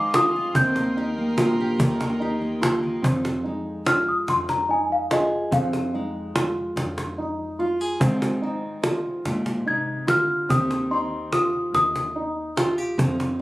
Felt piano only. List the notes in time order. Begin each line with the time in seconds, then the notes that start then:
Already playing: D#4
0.14 F4
0.55 C4
0.97 D#4
1.38 F4
2.20 D#4
2.61 F4
3.02 C4
3.44 D#4
3.86 F4
4.69 D#4
5.11 F4
5.52 C4
5.94 D#4
6.35 F4
7.18 D#4
7.59 F4
8.00 C4
8.42 D#4
8.83 F4
9.66 D#4
10.07 F4
10.49 C4
10.91 D#4
11.33 F4
12.16 D#4
12.57 F4
12.98 C4